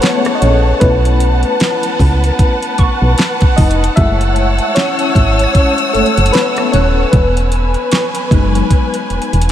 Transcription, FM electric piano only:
Already playing: A3 C#4 G#4 A4 C#5
0.01 B3 B4
0.35 D#5
0.41 C#4 C#5
0.80 A3 B3 C#4 E4 B4
3.56 D#4 D#5
3.96 G#3 A3 E4 E5
4.75 C#4 C#5
5.54 C#4 C#5
5.93 A3 A4
6.33 B3 B4
6.72 C#4 C#5
7.11 B3 B4
8.31 F#3 G#3 D#4

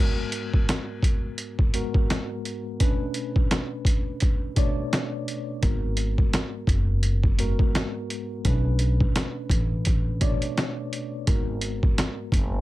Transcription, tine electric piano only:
Already playing: G#2 G#3 B3 F#4
0.00 A#4
1.73 G#2 G#3 B3 F#4 A#4
2.79 B2 A3 C#4 D4 B4
4.55 B2 A3 D4 C#5 D5
5.61 G#2 G#3 B3 F#4 A#4
7.38 G#2 G#3 B3 F#4 A#4
8.44 B2 A3 C#4 D4 B4
10.20 B2 A3 D4 C#5 D5
11.26 G#2 G#3 B3 F#4 A#4

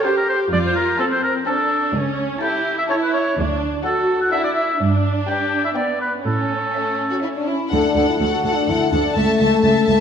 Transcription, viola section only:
0.04 G4
0.51 F4
1.00 C4
1.48 D4
1.95 C#4
2.43 E4
2.91 E4
3.38 D4
3.86 F#4
4.33 E4
4.81 D4
5.77 B3
6.26 C#4
7.73 A4
7.97 A4
8.21 A4
8.45 A4
8.69 A4
8.92 A4
9.16 A4
9.41 A4
9.64 A4
9.88 A4

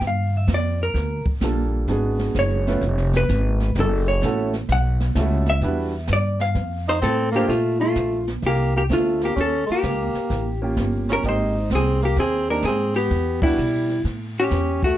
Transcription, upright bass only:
0.01 G2
0.47 F2
0.94 D2
1.25 muted upright bass stroke
1.41 A#1
1.88 G#1
2.35 F#1
2.81 F1
3.29 G#1
3.75 F#1
4.21 A1
4.69 B1
5.15 C#2
5.62 E2
6.09 G2
6.55 F2
7.02 A2
7.48 A#2
7.96 A#1
8.42 C2
8.89 D2
9.36 D#2
9.69 muted upright bass stroke
9.83 C#2
10.14 muted upright bass stroke
10.30 A1
10.77 G1
11.23 G#1
11.70 C2
12.16 D#2
12.64 G#2
13.10 E2
13.58 B2
14.04 A2
14.51 E2

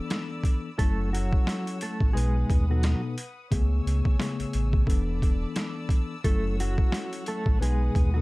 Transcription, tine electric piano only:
Already playing: E3 B3 D4 A4
0.79 F#3 C#4 E4 A4
2.14 B2 B3 D#4 B4
2.70 B2 B3 D#4 A4
3.51 C#3 A3 B3 G#4
4.20 C#3 A3 B3 G#4
4.87 E3 B3 D4 A4
6.24 F#3 C#4 E4 A4
7.60 B2 B3 D#4 B4
8.15 B2 B3 D#4 A4

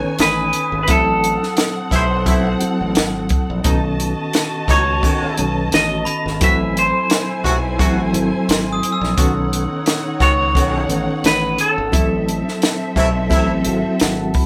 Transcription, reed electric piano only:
Already playing: D#3 B3 C#4 A4 B4
0.87 F#3 C4 E4 A4
2.26 F#3 C4 E4 A4
2.60 F#3 C4 E4 A4
3.64 D#3 B3 C#4 A4
5.03 D#3 B3 C#4 A4
5.37 D#3 B3 C#4 A4
6.41 F#3 B3 E4 A4
6.48 C4
7.79 F#3 C4 E4 A4
8.13 F#3 C4 E4 A4
9.17 D#3 B3 C#4 A4
10.55 D#3 B3 C#4 A4
10.88 D#3 B3 C#4 A4
11.92 F#3 C4 E4 A4
13.29 F#3 C4 E4 A4
13.65 F#3 C4 E4 F#4 E5
14.00 F#5
14.19 A5
14.34 B5

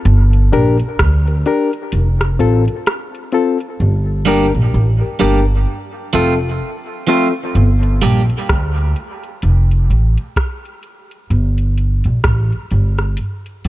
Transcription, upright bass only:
0.05 G1
0.53 A#1
1.00 D2
1.93 F1
2.40 A1
3.80 G1
4.55 A#1
4.74 A1
5.21 G1
6.14 F1
7.55 G1
8.02 A#1
8.50 D2
9.43 F1
9.90 A1
11.30 G1
12.05 A#1
12.25 A1
12.72 G1
13.65 F1

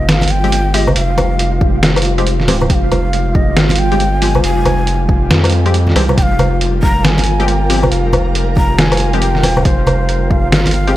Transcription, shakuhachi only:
Already playing: D#5
0.09 F5
0.31 G5
0.74 D#5
0.96 F5
2.70 G5
2.74 F5
3.35 D#5
3.57 F5 G5
3.79 G5
4.22 G#5
4.44 G#5
6.18 G5
6.22 F5
6.83 A#5
7.04 G#5
7.48 G5
7.91 F5
8.57 A#5
8.79 G#5
9.22 G5
9.65 C5
10.31 F5
10.53 F5

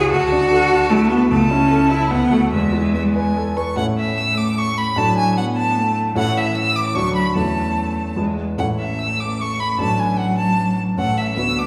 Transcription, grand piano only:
Already playing: C#2 E4 F#4 G#4 C#5
0.12 D2
0.32 D4
0.51 A4
0.71 F#4
0.91 E4
1.10 F#4
1.31 C#2
1.51 E4
1.71 A4
1.91 E4
2.11 D2
2.31 F#4 A4
2.52 E2
2.73 E4
2.94 B3
3.16 B4
3.37 A4
3.57 B4
3.76 A2 A3 C#4 E4
4.96 A2 A3 D4 F#4
6.15 A2 A3 C#4 E4
6.95 D2 F#3 D4 F#4
7.35 E2 A3 C#4 E4
8.16 E2 G#3 B3 E4
8.57 A1 A3 C#4 E4
9.78 A1 A3 D4 F#4
10.97 A1 A3 C#4 A4
11.36 D2 B3 D4 F#4

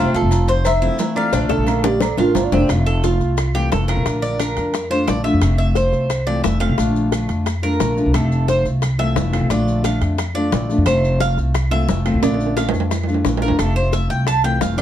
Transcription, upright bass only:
0.14 F1
0.22 F1
1.33 A#1
1.49 A#1
1.58 A#1
2.17 A1
2.35 G1
2.52 F1
2.69 F1
3.20 C2
3.72 F1
3.97 A1
4.06 A#1
4.57 F2
5.08 A#1
5.33 F2
5.42 F1
5.92 C2
6.44 F1
6.69 C2
6.78 A#1
7.29 F2
7.80 A#1
8.06 C2
8.15 F1
8.65 C2
9.16 F1
9.42 C2
9.49 A#1
10.01 F2
10.52 A#1
10.78 F2
10.86 F1
11.37 C2
11.88 F1
12.14 C2
12.22 A#1
12.74 F2
13.25 A#1
13.50 F2
13.59 F1
14.10 C2
14.61 F1

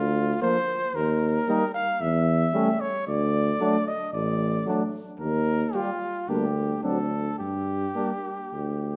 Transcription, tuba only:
Already playing: D2
0.95 D#2
2.01 E2
3.07 D2
4.13 A1
5.20 D#2
6.29 D2
6.84 D2
7.40 G2
8.53 D2

